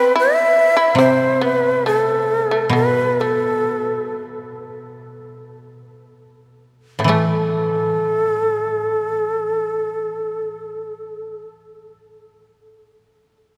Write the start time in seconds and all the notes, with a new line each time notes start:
Already playing: C4 B4
0.16 E4 E5
0.77 E4
0.95 C3 C4 C5
1.41 B3 B4
1.86 A3 A4
2.51 A3
2.70 B2 B3
2.74 B4
3.01 A3
3.20 A3 A4
6.99 A2 B3
7.04 E3 A3
7.09 A3 A4